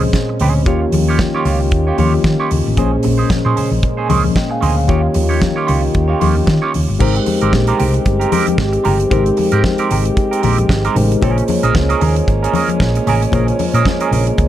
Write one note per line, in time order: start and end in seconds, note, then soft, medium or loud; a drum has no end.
0.00 0.69 A#2 medium
0.00 0.65 G#3 medium
0.00 0.65 A#3 medium
0.00 0.66 A#3 medium
0.00 0.68 C4 soft
0.00 0.70 C#4 medium
0.00 6.96 C#4 medium
0.00 0.68 G#4 medium
0.00 0.68 C5 medium
0.00 muted clean electric guitar stroke soft
0.00 high conga medium
0.13 muted clean electric guitar stroke soft
0.13 kick loud
0.13 snare medium
0.13 closed hi-hat medium
0.13 muted conga soft
0.29 muted clean electric guitar stroke soft
0.39 0.67 D2 medium
0.39 0.61 C#4 medium
0.39 0.55 G#4 medium
0.39 0.53 C5 loud
0.39 open hi-hat medium
0.39 muted conga soft
0.39 low conga medium
0.55 muted clean electric guitar stroke soft
0.65 0.85 D#2 loud
0.65 1.95 D#3 medium
0.65 2.75 D#3 medium
0.65 1.96 A#3 medium
0.65 1.96 F4 medium
0.65 2.76 F4 medium
0.65 0.84 F4 medium
0.65 2.75 G4 medium
0.65 0.82 G4 medium
0.65 1.96 G4 medium
0.65 1.96 C#5 medium
0.65 0.81 C#5 medium
0.65 kick loud
0.65 closed hi-hat medium
0.82 muted clean electric guitar stroke soft
0.92 1.21 D#2 loud
0.92 muted clean electric guitar stroke soft
0.92 open hi-hat medium
0.92 muted conga soft
0.92 high conga medium
1.08 1.20 F4 medium
1.08 1.20 G4 medium
1.08 1.19 C#5 medium
1.19 kick loud
1.19 snare loud
1.19 closed hi-hat medium
1.19 muted conga soft
1.19 high conga medium
1.35 1.44 F4 medium
1.35 1.45 G4 medium
1.35 1.46 C#5 medium
1.45 1.72 C#2 loud
1.45 1.60 F4 medium
1.45 1.60 G4 medium
1.45 1.59 C#5 medium
1.45 open hi-hat medium
1.45 muted conga soft
1.45 low conga medium
1.60 muted clean electric guitar stroke medium
1.71 1.90 D#2 medium
1.71 muted clean electric guitar stroke soft
1.71 kick loud
1.71 closed hi-hat medium
1.87 1.97 F4 medium
1.87 1.98 G4 medium
1.87 1.98 C#5 medium
1.98 2.17 D#2 medium
1.98 2.77 D#3 medium
1.98 2.76 A#3 soft
1.98 2.13 F4 medium
1.98 2.78 F4 soft
1.98 2.78 G4 soft
1.98 2.13 G4 medium
1.98 2.78 C#5 medium
1.98 2.13 C#5 medium
1.98 open hi-hat medium
1.98 high conga loud
2.14 high conga medium
2.24 2.35 D#3 loud
2.24 muted clean electric guitar stroke soft
2.24 kick loud
2.24 snare medium
2.24 muted conga soft
2.40 2.50 F4 medium
2.40 2.51 G4 medium
2.40 2.51 C#5 medium
2.51 2.62 D#2 medium
2.51 open hi-hat medium
2.51 muted conga soft
2.51 low conga medium
2.66 2.74 A1 medium
2.66 muted clean electric guitar stroke soft
2.76 2.96 A#1 loud
2.76 4.06 A#2 medium
2.76 4.86 G#3 medium
2.76 4.86 A#3 medium
2.76 4.07 A#3 medium
2.76 2.95 C#4 medium
2.76 4.07 C#4 medium
2.76 2.92 G#4 medium
2.76 4.07 G#4 medium
2.76 4.08 C5 medium
2.76 2.91 C5 medium
2.76 kick loud
2.76 closed hi-hat medium
2.92 muted clean electric guitar stroke soft
3.03 3.23 A#1 medium
3.03 muted clean electric guitar stroke soft
3.03 open hi-hat medium
3.03 muted conga soft
3.03 high conga medium
3.18 3.29 C#4 medium
3.18 3.30 G#4 medium
3.18 3.30 C5 medium
3.30 muted fingered electric bass stroke soft
3.30 kick loud
3.30 snare loud
3.30 closed hi-hat medium
3.30 muted conga soft
3.30 high conga medium
3.45 3.53 A#2 medium
3.45 3.55 C#4 medium
3.45 3.56 G#4 medium
3.45 3.56 C5 medium
3.56 3.71 C#4 medium
3.56 3.71 G#4 medium
3.56 3.70 C5 medium
3.56 open hi-hat medium
3.56 muted conga soft
3.56 low conga medium
3.71 3.79 A#1 loud
3.71 muted clean electric guitar stroke soft
3.83 muted clean electric guitar stroke soft
3.83 kick loud
3.83 closed hi-hat medium
3.83 muted conga soft
3.97 4.08 C#4 medium
3.97 4.08 G#4 medium
3.97 4.09 C5 medium
4.09 4.28 C#2 medium
4.09 4.24 C#4 medium
4.09 4.23 G#4 medium
4.09 4.22 C5 medium
4.09 open hi-hat medium
4.09 muted conga soft
4.09 high conga medium
4.24 muted clean electric guitar stroke soft
4.24 high conga medium
4.36 4.51 D#5 medium
4.36 4.50 G5 medium
4.36 muted clean electric guitar stroke soft
4.36 kick loud
4.36 snare loud
4.50 4.76 F5 medium
4.50 4.76 G#5 medium
4.50 muted clean electric guitar stroke soft
4.61 4.89 D2 loud
4.61 4.80 C#4 medium
4.61 4.76 G#4 medium
4.61 4.75 C5 medium
4.61 open hi-hat medium
4.61 muted conga soft
4.61 low conga medium
4.77 4.89 C#5 medium
4.77 5.02 F5 medium
4.77 muted clean electric guitar stroke soft
4.87 5.07 D#2 medium
4.87 6.95 D#3 medium
4.87 6.83 D#3 medium
4.87 6.96 A#3 medium
4.87 5.06 F4 medium
4.87 6.83 F4 medium
4.87 6.96 F4 medium
4.87 6.83 G4 medium
4.87 5.02 G4 loud
4.87 6.96 G4 medium
4.87 5.01 C#5 loud
4.87 6.97 C#5 medium
4.87 kick loud
4.87 closed hi-hat medium
4.87 muted conga soft
5.02 muted clean electric guitar stroke soft
5.14 5.44 D#2 loud
5.14 muted clean electric guitar stroke soft
5.14 open hi-hat medium
5.14 high conga medium
5.29 5.40 F4 medium
5.29 5.40 G4 medium
5.29 5.41 C#5 medium
5.42 kick loud
5.42 snare loud
5.42 closed hi-hat medium
5.42 high conga medium
5.56 5.65 F4 medium
5.56 5.66 G4 medium
5.56 5.67 C#5 medium
5.67 5.87 C#2 medium
5.67 5.82 F4 medium
5.67 5.82 G4 medium
5.67 5.81 C#5 medium
5.67 open hi-hat medium
5.67 muted conga soft
5.67 low conga medium
5.82 muted clean electric guitar stroke soft
5.94 6.13 D#2 medium
5.94 muted clean electric guitar stroke soft
5.94 kick loud
5.94 closed hi-hat medium
6.08 6.19 F4 medium
6.08 6.20 G4 medium
6.08 6.20 C#5 medium
6.20 6.41 D#2 medium
6.20 6.35 F4 medium
6.20 6.35 G4 medium
6.20 6.34 C#5 medium
6.20 open hi-hat medium
6.20 muted conga soft
6.20 high conga medium
6.35 muted clean electric guitar stroke soft
6.35 high conga medium
6.47 6.58 D#3 loud
6.47 muted clean electric guitar stroke soft
6.47 kick loud
6.47 snare loud
6.47 closed hi-hat medium
6.62 6.72 F4 medium
6.62 6.73 G4 medium
6.62 6.73 C#5 medium
6.73 6.85 D#2 medium
6.73 muted clean electric guitar stroke soft
6.73 open hi-hat medium
6.73 low conga medium
6.88 6.97 G1 medium
6.88 muted clean electric guitar stroke soft
6.99 7.19 G#1 loud
6.99 9.07 G#3 medium
6.99 14.48 G#3 medium
6.99 7.18 C4 medium
6.99 11.18 C4 medium
6.99 9.07 D#4 medium
6.99 9.07 G4 medium
6.99 11.18 G4 medium
6.99 7.16 G4 loud
6.99 9.08 A#4 medium
6.99 7.15 A#4 loud
6.99 9.08 C5 medium
6.99 kick loud
6.99 crash loud
6.99 low conga medium
7.15 muted clean electric guitar stroke soft
7.15 closed hi-hat soft
7.26 muted clean electric guitar stroke soft
7.26 open hi-hat medium
7.26 high conga medium
7.41 7.50 G#1 medium
7.41 7.52 C4 medium
7.41 7.53 G4 medium
7.41 7.53 A#4 medium
7.41 closed hi-hat medium
7.53 7.71 A#1 loud
7.53 kick loud
7.53 snare loud
7.53 muted conga soft
7.53 high conga medium
7.67 7.77 C4 medium
7.67 7.78 G4 medium
7.67 7.79 A#4 medium
7.67 closed hi-hat soft
7.79 7.98 C2 loud
7.79 7.94 C4 medium
7.79 7.93 G4 medium
7.79 7.93 A#4 medium
7.79 open hi-hat medium
7.79 low conga medium
7.94 muted clean electric guitar stroke soft
7.94 closed hi-hat soft
8.05 8.24 G1 medium
8.05 muted clean electric guitar stroke soft
8.05 kick loud
8.05 closed hi-hat medium
8.20 8.30 C4 medium
8.20 8.31 G4 medium
8.20 8.31 A#4 medium
8.20 closed hi-hat medium
8.32 8.46 C4 medium
8.32 8.47 G4 medium
8.32 8.46 A#4 medium
8.32 open hi-hat medium
8.32 high conga loud
8.47 muted clean electric guitar stroke soft
8.47 closed hi-hat medium
8.47 high conga medium
8.58 8.77 G#1 medium
8.58 muted clean electric guitar stroke soft
8.58 kick loud
8.58 snare loud
8.58 muted conga soft
8.73 muted clean electric guitar stroke soft
8.73 closed hi-hat soft
8.84 9.04 G1 loud
8.84 9.02 C4 medium
8.84 8.99 G4 medium
8.84 8.98 A#4 loud
8.84 open hi-hat medium
8.84 low conga medium
8.99 muted clean electric guitar stroke soft
8.99 closed hi-hat medium
9.10 9.30 G#1 loud
9.10 10.91 G#3 medium
9.10 9.29 C4 loud
9.10 10.92 D#4 medium
9.10 10.92 G4 medium
9.10 9.25 G4 loud
9.10 10.93 A#4 medium
9.10 9.24 A#4 loud
9.10 10.93 C5 medium
9.10 kick loud
9.10 closed hi-hat medium
9.10 muted conga soft
9.10 low conga medium
9.25 muted clean electric guitar stroke soft
9.25 closed hi-hat soft
9.37 muted clean electric guitar stroke soft
9.37 open hi-hat medium
9.37 high conga medium
9.52 9.61 G#2 medium
9.52 9.62 C4 medium
9.52 9.63 G4 medium
9.52 9.63 A#4 medium
9.52 closed hi-hat medium
9.64 muted clean electric guitar stroke soft
9.64 kick loud
9.64 snare loud
9.64 muted conga soft
9.64 high conga medium
9.78 9.90 C4 medium
9.78 9.90 G4 medium
9.78 9.91 A#4 medium
9.78 closed hi-hat soft
9.91 10.09 G#1 loud
9.91 10.05 C4 medium
9.91 10.05 G4 medium
9.91 10.04 A#4 medium
9.91 open hi-hat medium
9.91 low conga medium
10.05 muted clean electric guitar stroke medium
10.05 closed hi-hat medium
10.16 muted clean electric guitar stroke soft
10.16 kick loud
10.16 closed hi-hat medium
10.31 10.41 C4 medium
10.31 10.43 G4 medium
10.31 10.43 A#4 medium
10.31 closed hi-hat medium
10.42 10.62 A#1 medium
10.42 10.57 C4 medium
10.42 10.58 G4 medium
10.42 10.57 A#4 medium
10.42 open hi-hat medium
10.42 muted conga soft
10.42 high conga medium
10.58 muted clean electric guitar stroke soft
10.58 closed hi-hat soft
10.58 high conga medium
10.69 10.88 G#1 medium
10.69 muted clean electric guitar stroke soft
10.69 kick loud
10.69 snare loud
10.69 muted conga soft
10.85 10.96 C4 medium
10.85 10.96 G4 medium
10.85 10.97 A#4 medium
10.85 closed hi-hat soft
10.95 11.14 A1 medium
10.95 11.22 G#3 medium
10.95 11.22 D#4 medium
10.95 11.22 G4 medium
10.95 11.22 A#4 medium
10.95 11.22 C5 medium
10.95 muted clean electric guitar stroke soft
10.95 open hi-hat medium
10.95 low conga medium
11.12 muted clean electric guitar stroke soft
11.12 closed hi-hat soft
11.21 11.41 A#1 loud
11.21 13.28 A#3 medium
11.21 14.48 A#3 medium
11.21 14.48 C#4 loud
11.21 11.43 C#4 loud
11.21 13.29 F4 medium
11.21 13.29 G#4 medium
11.21 11.38 G#4 loud
11.21 11.37 A#4 medium
11.21 13.29 C5 medium
11.21 13.30 C#5 medium
11.21 kick loud
11.21 closed hi-hat medium
11.21 muted conga soft
11.21 low conga medium
11.38 muted clean electric guitar stroke soft
11.38 closed hi-hat soft
11.48 muted clean electric guitar stroke soft
11.48 open hi-hat medium
11.48 muted conga soft
11.48 high conga medium
11.63 11.72 A#1 medium
11.63 11.74 C#4 medium
11.63 11.74 G#4 medium
11.63 11.75 A#4 medium
11.63 closed hi-hat medium
11.75 11.93 C#2 loud
11.75 kick loud
11.75 snare loud
11.75 high conga medium
11.89 12.00 C#4 medium
11.89 12.01 G#4 medium
11.89 12.02 A#4 medium
11.89 closed hi-hat soft
12.01 12.20 D#2 loud
12.01 12.16 C#4 medium
12.01 12.16 G#4 medium
12.01 12.15 A#4 medium
12.01 open hi-hat medium
12.01 muted conga soft
12.01 low conga medium
12.16 muted clean electric guitar stroke soft
12.16 closed hi-hat medium
12.28 12.46 G#1 loud
12.28 muted clean electric guitar stroke soft
12.28 kick loud
12.28 closed hi-hat medium
12.43 12.54 C#4 medium
12.43 12.54 G#4 medium
12.43 12.55 A#4 medium
12.43 closed hi-hat medium
12.54 12.69 C#4 medium
12.54 12.69 G#4 medium
12.54 12.69 A#4 medium
12.54 open hi-hat medium
12.54 high conga medium
12.69 muted clean electric guitar stroke medium
12.69 closed hi-hat soft
12.69 high conga medium
12.80 12.98 A#1 loud
12.80 muted clean electric guitar stroke soft
12.80 kick loud
12.80 snare loud
12.80 muted conga soft
12.95 muted clean electric guitar stroke soft
12.95 closed hi-hat soft
13.07 13.25 A1 medium
13.07 13.25 C#4 loud
13.07 13.23 G#4 medium
13.07 13.22 A#4 loud
13.07 open hi-hat medium
13.07 low conga medium
13.22 muted clean electric guitar stroke medium
13.22 closed hi-hat soft
13.31 13.51 A#1 loud
13.31 14.48 A#3 medium
13.31 13.51 C#4 medium
13.31 14.48 F4 medium
13.31 14.48 G#4 medium
13.31 13.48 G#4 loud
13.31 13.47 A#4 loud
13.31 14.48 C5 medium
13.31 14.48 C#5 medium
13.31 kick loud
13.31 closed hi-hat medium
13.31 muted conga soft
13.31 low conga medium
13.48 muted clean electric guitar stroke soft
13.48 closed hi-hat soft
13.59 muted clean electric guitar stroke soft
13.59 open hi-hat medium
13.59 muted conga soft
13.59 high conga medium
13.74 13.82 A#2 medium
13.74 13.85 C#4 medium
13.74 13.86 G#4 medium
13.74 13.86 A#4 medium
13.74 closed hi-hat medium
13.85 muted clean electric guitar stroke soft
13.85 kick loud
13.85 snare loud
13.85 muted conga soft
13.85 high conga medium
14.00 14.11 C#4 medium
14.00 14.11 G#4 medium
14.00 14.13 A#4 medium
14.00 closed hi-hat soft
14.11 14.30 A#1 loud
14.11 14.27 C#4 medium
14.11 14.27 G#4 medium
14.11 14.26 A#4 medium
14.11 open hi-hat medium
14.11 muted conga soft
14.11 low conga medium
14.27 muted clean electric guitar stroke medium
14.27 closed hi-hat medium
14.38 14.48 C#2 loud
14.38 muted clean electric guitar stroke soft
14.38 kick loud
14.38 closed hi-hat medium
14.38 muted conga soft